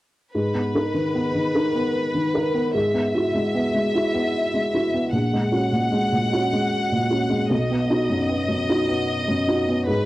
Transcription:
0.34 2.71 G#2 soft
0.34 2.70 B4 soft
0.54 0.86 B3 soft
0.75 0.93 D#4 soft
0.75 0.93 A#4 soft
0.94 1.26 D#3 soft
1.15 1.46 B3 soft
1.34 1.66 D#3 soft
1.55 1.73 D#4 soft
1.55 1.73 A#4 soft
1.75 2.39 B3 soft
2.14 2.46 D#3 soft
2.34 2.52 D#4 soft
2.34 2.52 A#4 soft
2.54 2.74 B3 soft
2.74 5.08 G#2 soft
2.74 5.09 E5 soft
2.94 3.26 B3 soft
3.15 3.32 E4 soft
3.15 3.32 F#4 soft
3.34 3.66 G#3 soft
3.55 3.86 B3 soft
3.74 4.06 G#3 soft
3.95 4.12 E4 soft
3.95 4.12 F#4 soft
4.14 4.77 B3 soft
4.54 4.85 G#3 soft
4.74 4.91 E4 soft
4.74 4.91 F#4 soft
4.94 5.13 B3 soft
5.12 7.46 A#1 soft
5.12 7.46 F#5 medium
5.33 5.64 G#3 soft
5.52 5.70 C#4 soft
5.52 5.70 F#4 soft
5.72 6.04 A#2 soft
5.92 6.24 G#3 soft
6.12 6.44 A#2 soft
6.32 6.50 C#4 soft
6.32 6.50 F#4 soft
6.53 7.15 G#3 soft
6.92 7.23 A#2 soft
7.10 7.28 C#4 soft
7.10 7.28 F#4 soft
7.29 7.50 G#3 soft
7.50 9.83 B1 soft
7.50 9.84 D#5 medium
7.71 8.02 B3 soft
7.90 8.08 D#4 soft
7.90 8.08 F#4 soft
8.10 8.41 F#2 soft
8.29 8.61 B3 soft
8.48 8.80 F#2 soft
8.69 8.87 D#4 soft
8.69 8.87 F#4 soft
8.88 9.52 B3 soft
9.28 9.60 F#2 soft
9.48 9.66 D#4 soft
9.48 9.66 F#4 soft
9.68 9.88 B3 soft
9.87 10.05 G#2 medium
9.87 10.05 B4 medium

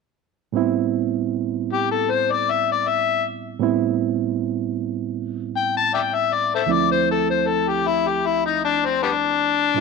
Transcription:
0.52 3.57 A2 medium
0.52 3.57 G3 medium
0.52 3.58 B3 medium
0.52 3.58 C4 medium
0.57 3.59 E4 medium
1.73 1.90 G4 medium
1.91 2.12 A4 medium
2.10 2.33 C5 medium
2.31 2.52 D5 medium
2.51 2.67 E5 medium
2.72 2.89 D5 medium
2.88 3.24 E5 medium
3.59 6.64 A2 medium
3.59 6.64 G3 medium
3.59 6.65 B3 medium
3.59 6.65 C4 medium
3.59 6.65 E4 medium
5.57 5.74 G5 loud
5.77 5.92 A5 medium
5.94 6.00 D5 medium
5.94 6.01 E5 medium
5.94 6.15 G5 medium
6.14 6.34 E5 medium
6.33 6.50 D5 medium
6.55 6.63 A4 medium
6.55 6.62 C5 medium
6.55 6.73 E5 medium
6.66 9.70 D2 medium
6.66 9.71 F3 medium
6.66 9.71 A3 medium
6.66 9.72 C4 medium
6.66 9.72 E4 medium
6.72 6.89 D5 medium
6.92 7.07 C5 medium
7.11 7.28 A4 medium
7.30 7.49 C5 medium
7.47 7.70 A4 medium
7.69 7.89 G4 medium
7.87 8.09 E4 medium
8.07 8.28 G4 medium
8.26 8.43 E4 medium
8.46 8.61 D#4 medium
8.65 8.86 D4 medium
8.85 9.00 C4 medium
9.03 9.11 G3 medium
9.03 9.11 B3 medium
9.03 9.80 D4 loud
9.74 9.80 A2 medium
9.74 9.80 G3 medium
9.74 9.80 B3 medium
9.74 9.80 C4 medium

